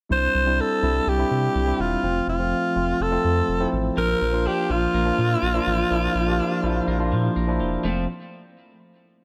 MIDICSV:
0, 0, Header, 1, 5, 480
1, 0, Start_track
1, 0, Key_signature, -1, "major"
1, 0, Tempo, 483871
1, 100, Time_signature, 4, 2, 24, 8
1, 9170, End_track
2, 0, Start_track
2, 0, Title_t, "Alto saxophone"
2, 0, Program_c, 0, 65
2, 120, Note_on_c, 0, 72, 106
2, 600, Note_on_c, 0, 69, 93
2, 615, Note_off_c, 0, 72, 0
2, 1076, Note_on_c, 0, 67, 91
2, 1091, Note_off_c, 0, 69, 0
2, 1794, Note_on_c, 0, 65, 81
2, 1809, Note_off_c, 0, 67, 0
2, 2267, Note_off_c, 0, 65, 0
2, 2272, Note_on_c, 0, 65, 76
2, 2993, Note_on_c, 0, 69, 83
2, 3008, Note_off_c, 0, 65, 0
2, 3707, Note_off_c, 0, 69, 0
2, 3949, Note_on_c, 0, 70, 106
2, 4437, Note_on_c, 0, 67, 92
2, 4452, Note_off_c, 0, 70, 0
2, 4674, Note_on_c, 0, 65, 90
2, 4689, Note_off_c, 0, 67, 0
2, 7307, Note_off_c, 0, 65, 0
2, 9170, End_track
3, 0, Start_track
3, 0, Title_t, "Tine electric piano"
3, 0, Program_c, 1, 4
3, 93, Note_on_c, 1, 55, 64
3, 99, Note_on_c, 1, 60, 57
3, 102, Note_on_c, 1, 62, 56
3, 106, Note_on_c, 1, 64, 69
3, 305, Control_c, 1, 64, 127
3, 390, Note_off_c, 1, 55, 0
3, 393, Note_off_c, 1, 60, 0
3, 395, Note_off_c, 1, 62, 0
3, 397, Note_off_c, 1, 64, 0
3, 454, Note_on_c, 1, 55, 67
3, 459, Note_on_c, 1, 60, 62
3, 465, Note_on_c, 1, 62, 62
3, 468, Note_on_c, 1, 64, 72
3, 751, Note_off_c, 1, 55, 0
3, 753, Note_off_c, 1, 60, 0
3, 756, Note_off_c, 1, 62, 0
3, 758, Note_off_c, 1, 64, 0
3, 817, Note_on_c, 1, 55, 65
3, 820, Note_on_c, 1, 60, 56
3, 824, Note_on_c, 1, 62, 59
3, 828, Note_on_c, 1, 64, 70
3, 1112, Note_off_c, 1, 55, 0
3, 1114, Note_off_c, 1, 60, 0
3, 1116, Note_off_c, 1, 62, 0
3, 1118, Note_off_c, 1, 64, 0
3, 1175, Note_on_c, 1, 55, 71
3, 1179, Note_on_c, 1, 60, 63
3, 1184, Note_on_c, 1, 62, 62
3, 1186, Note_on_c, 1, 64, 73
3, 1569, Note_off_c, 1, 55, 0
3, 1571, Note_off_c, 1, 60, 0
3, 1574, Note_off_c, 1, 62, 0
3, 1575, Note_off_c, 1, 64, 0
3, 1654, Note_on_c, 1, 55, 66
3, 1657, Note_on_c, 1, 60, 59
3, 1662, Note_on_c, 1, 62, 57
3, 1665, Note_on_c, 1, 64, 70
3, 1951, Note_off_c, 1, 55, 0
3, 1952, Note_off_c, 1, 60, 0
3, 1955, Note_off_c, 1, 62, 0
3, 1956, Note_off_c, 1, 64, 0
3, 2011, Note_on_c, 1, 53, 65
3, 2015, Note_on_c, 1, 57, 58
3, 2019, Note_on_c, 1, 60, 58
3, 2024, Note_on_c, 1, 65, 70
3, 2034, Control_c, 1, 64, 0
3, 2228, Control_c, 1, 64, 127
3, 2309, Note_off_c, 1, 53, 0
3, 2311, Note_off_c, 1, 57, 0
3, 2313, Note_off_c, 1, 60, 0
3, 2316, Note_off_c, 1, 65, 0
3, 2372, Note_on_c, 1, 53, 67
3, 2375, Note_on_c, 1, 57, 61
3, 2379, Note_on_c, 1, 60, 62
3, 2383, Note_on_c, 1, 65, 71
3, 2670, Note_off_c, 1, 53, 0
3, 2671, Note_off_c, 1, 57, 0
3, 2673, Note_off_c, 1, 60, 0
3, 2675, Note_off_c, 1, 65, 0
3, 2732, Note_on_c, 1, 53, 65
3, 2734, Note_on_c, 1, 57, 58
3, 2739, Note_on_c, 1, 60, 59
3, 2743, Note_on_c, 1, 65, 67
3, 3030, Note_off_c, 1, 53, 0
3, 3030, Note_off_c, 1, 57, 0
3, 3033, Note_off_c, 1, 60, 0
3, 3035, Note_off_c, 1, 65, 0
3, 3088, Note_on_c, 1, 53, 68
3, 3092, Note_on_c, 1, 57, 61
3, 3097, Note_on_c, 1, 60, 67
3, 3100, Note_on_c, 1, 65, 78
3, 3486, Note_off_c, 1, 53, 0
3, 3488, Note_off_c, 1, 57, 0
3, 3490, Note_off_c, 1, 60, 0
3, 3492, Note_off_c, 1, 65, 0
3, 3567, Note_on_c, 1, 53, 74
3, 3570, Note_on_c, 1, 57, 74
3, 3575, Note_on_c, 1, 60, 74
3, 3578, Note_on_c, 1, 64, 84
3, 3867, Note_off_c, 1, 53, 0
3, 3869, Note_off_c, 1, 57, 0
3, 3871, Note_off_c, 1, 60, 0
3, 3873, Note_off_c, 1, 64, 0
3, 3932, Note_on_c, 1, 53, 67
3, 3936, Note_on_c, 1, 58, 60
3, 3941, Note_on_c, 1, 62, 61
3, 3945, Note_on_c, 1, 65, 74
3, 3955, Control_c, 1, 64, 0
3, 4123, Control_c, 1, 64, 127
3, 4230, Note_off_c, 1, 53, 0
3, 4232, Note_off_c, 1, 58, 0
3, 4234, Note_off_c, 1, 62, 0
3, 4236, Note_off_c, 1, 65, 0
3, 4290, Note_on_c, 1, 53, 69
3, 4293, Note_on_c, 1, 58, 61
3, 4299, Note_on_c, 1, 62, 61
3, 4303, Note_on_c, 1, 65, 79
3, 4588, Note_off_c, 1, 53, 0
3, 4590, Note_off_c, 1, 58, 0
3, 4593, Note_off_c, 1, 62, 0
3, 4595, Note_off_c, 1, 65, 0
3, 4650, Note_on_c, 1, 53, 64
3, 4654, Note_on_c, 1, 58, 57
3, 4658, Note_on_c, 1, 62, 61
3, 4662, Note_on_c, 1, 65, 68
3, 4949, Note_off_c, 1, 53, 0
3, 4951, Note_off_c, 1, 58, 0
3, 4953, Note_off_c, 1, 62, 0
3, 4955, Note_off_c, 1, 65, 0
3, 5012, Note_on_c, 1, 53, 72
3, 5015, Note_on_c, 1, 58, 67
3, 5018, Note_on_c, 1, 62, 68
3, 5022, Note_on_c, 1, 65, 80
3, 5408, Note_off_c, 1, 53, 0
3, 5409, Note_off_c, 1, 58, 0
3, 5411, Note_off_c, 1, 62, 0
3, 5413, Note_off_c, 1, 65, 0
3, 5496, Note_on_c, 1, 53, 81
3, 5499, Note_on_c, 1, 58, 70
3, 5502, Note_on_c, 1, 62, 75
3, 5506, Note_on_c, 1, 65, 84
3, 5791, Note_off_c, 1, 53, 0
3, 5793, Note_off_c, 1, 58, 0
3, 5795, Note_off_c, 1, 62, 0
3, 5796, Note_off_c, 1, 65, 0
3, 5854, Note_on_c, 1, 53, 79
3, 5859, Note_on_c, 1, 58, 69
3, 5862, Note_on_c, 1, 62, 70
3, 5865, Note_on_c, 1, 64, 88
3, 6151, Note_off_c, 1, 53, 0
3, 6153, Note_off_c, 1, 58, 0
3, 6154, Note_off_c, 1, 62, 0
3, 6156, Note_off_c, 1, 64, 0
3, 6218, Note_on_c, 1, 53, 75
3, 6223, Note_on_c, 1, 58, 74
3, 6226, Note_on_c, 1, 62, 70
3, 6228, Note_on_c, 1, 67, 87
3, 6513, Note_off_c, 1, 53, 0
3, 6515, Note_off_c, 1, 58, 0
3, 6517, Note_off_c, 1, 62, 0
3, 6518, Note_off_c, 1, 67, 0
3, 6573, Note_on_c, 1, 53, 79
3, 6576, Note_on_c, 1, 58, 69
3, 6580, Note_on_c, 1, 62, 71
3, 6584, Note_on_c, 1, 64, 83
3, 6870, Note_off_c, 1, 53, 0
3, 6872, Note_off_c, 1, 58, 0
3, 6874, Note_off_c, 1, 62, 0
3, 6876, Note_off_c, 1, 64, 0
3, 6933, Note_on_c, 1, 53, 81
3, 6939, Note_on_c, 1, 58, 79
3, 6942, Note_on_c, 1, 62, 76
3, 6947, Note_on_c, 1, 65, 90
3, 7328, Note_off_c, 1, 53, 0
3, 7331, Note_off_c, 1, 58, 0
3, 7332, Note_off_c, 1, 62, 0
3, 7335, Note_off_c, 1, 65, 0
3, 7416, Note_on_c, 1, 53, 81
3, 7421, Note_on_c, 1, 58, 69
3, 7425, Note_on_c, 1, 62, 74
3, 7429, Note_on_c, 1, 64, 87
3, 7712, Note_off_c, 1, 53, 0
3, 7714, Note_off_c, 1, 58, 0
3, 7716, Note_off_c, 1, 62, 0
3, 7718, Note_off_c, 1, 64, 0
3, 7778, Note_on_c, 1, 57, 65
3, 7778, Note_on_c, 1, 60, 66
3, 7780, Note_on_c, 1, 53, 72
3, 7780, Note_on_c, 1, 65, 81
3, 7793, Control_c, 1, 64, 0
3, 8002, Note_off_c, 1, 57, 0
3, 8002, Note_off_c, 1, 60, 0
3, 8003, Note_off_c, 1, 53, 0
3, 8003, Note_off_c, 1, 65, 0
3, 9170, End_track
4, 0, Start_track
4, 0, Title_t, "Clean electric guitar"
4, 0, Program_c, 2, 27
4, 3939, Note_on_c, 2, 53, 78
4, 4177, Note_off_c, 2, 53, 0
4, 4181, Note_on_c, 2, 53, 56
4, 4421, Note_on_c, 2, 62, 65
4, 4656, Note_off_c, 2, 53, 0
4, 4660, Note_on_c, 2, 53, 59
4, 4901, Note_on_c, 2, 58, 64
4, 5138, Note_off_c, 2, 53, 0
4, 5142, Note_on_c, 2, 53, 56
4, 5369, Note_off_c, 2, 58, 0
4, 5381, Note_on_c, 2, 58, 62
4, 5617, Note_off_c, 2, 53, 0
4, 5621, Note_on_c, 2, 53, 57
4, 5858, Note_off_c, 2, 53, 0
4, 5862, Note_on_c, 2, 53, 76
4, 6096, Note_off_c, 2, 53, 0
4, 6100, Note_on_c, 2, 53, 54
4, 6329, Note_off_c, 2, 62, 0
4, 6341, Note_on_c, 2, 62, 65
4, 6579, Note_off_c, 2, 53, 0
4, 6583, Note_on_c, 2, 53, 58
4, 6810, Note_off_c, 2, 58, 0
4, 6822, Note_on_c, 2, 58, 58
4, 7058, Note_off_c, 2, 53, 0
4, 7062, Note_on_c, 2, 53, 57
4, 7291, Note_off_c, 2, 58, 0
4, 7303, Note_on_c, 2, 58, 60
4, 7538, Note_off_c, 2, 53, 0
4, 7542, Note_on_c, 2, 53, 53
4, 7768, Note_off_c, 2, 53, 0
4, 7772, Note_on_c, 2, 53, 71
4, 7781, Note_off_c, 2, 58, 0
4, 7785, Note_on_c, 2, 57, 78
4, 7793, Note_off_c, 2, 62, 0
4, 7797, Note_on_c, 2, 60, 74
4, 7968, Note_off_c, 2, 53, 0
4, 7974, Note_off_c, 2, 57, 0
4, 7980, Note_off_c, 2, 60, 0
4, 9170, End_track
5, 0, Start_track
5, 0, Title_t, "Analog synth bass"
5, 0, Program_c, 3, 38
5, 103, Note_on_c, 3, 36, 99
5, 275, Note_off_c, 3, 36, 0
5, 341, Note_on_c, 3, 36, 86
5, 600, Note_off_c, 3, 36, 0
5, 819, Note_on_c, 3, 36, 97
5, 992, Note_off_c, 3, 36, 0
5, 1059, Note_on_c, 3, 36, 106
5, 1232, Note_off_c, 3, 36, 0
5, 1300, Note_on_c, 3, 48, 87
5, 1473, Note_off_c, 3, 48, 0
5, 1539, Note_on_c, 3, 36, 97
5, 1712, Note_off_c, 3, 36, 0
5, 1778, Note_on_c, 3, 28, 87
5, 1951, Note_off_c, 3, 28, 0
5, 2016, Note_on_c, 3, 29, 92
5, 2190, Note_off_c, 3, 29, 0
5, 2255, Note_on_c, 3, 29, 93
5, 2516, Note_off_c, 3, 29, 0
5, 2736, Note_on_c, 3, 29, 92
5, 2910, Note_off_c, 3, 29, 0
5, 2977, Note_on_c, 3, 29, 98
5, 3151, Note_off_c, 3, 29, 0
5, 3216, Note_on_c, 3, 41, 84
5, 3390, Note_off_c, 3, 41, 0
5, 3457, Note_on_c, 3, 29, 88
5, 3631, Note_off_c, 3, 29, 0
5, 3698, Note_on_c, 3, 33, 93
5, 3872, Note_off_c, 3, 33, 0
5, 3939, Note_on_c, 3, 34, 99
5, 4112, Note_off_c, 3, 34, 0
5, 4180, Note_on_c, 3, 34, 96
5, 4439, Note_off_c, 3, 34, 0
5, 4659, Note_on_c, 3, 34, 99
5, 4832, Note_off_c, 3, 34, 0
5, 4899, Note_on_c, 3, 34, 99
5, 5072, Note_off_c, 3, 34, 0
5, 5140, Note_on_c, 3, 46, 87
5, 5313, Note_off_c, 3, 46, 0
5, 5378, Note_on_c, 3, 34, 89
5, 5552, Note_off_c, 3, 34, 0
5, 5621, Note_on_c, 3, 33, 90
5, 5793, Note_off_c, 3, 33, 0
5, 5860, Note_on_c, 3, 34, 103
5, 6033, Note_off_c, 3, 34, 0
5, 6099, Note_on_c, 3, 34, 86
5, 6359, Note_off_c, 3, 34, 0
5, 6579, Note_on_c, 3, 34, 94
5, 6752, Note_off_c, 3, 34, 0
5, 6818, Note_on_c, 3, 34, 106
5, 7055, Note_on_c, 3, 46, 92
5, 7070, Note_off_c, 3, 34, 0
5, 7230, Note_off_c, 3, 46, 0
5, 7300, Note_on_c, 3, 34, 88
5, 7538, Note_on_c, 3, 28, 88
5, 7553, Note_off_c, 3, 34, 0
5, 7712, Note_off_c, 3, 28, 0
5, 7778, Note_on_c, 3, 29, 94
5, 8002, Note_off_c, 3, 29, 0
5, 9170, End_track
0, 0, End_of_file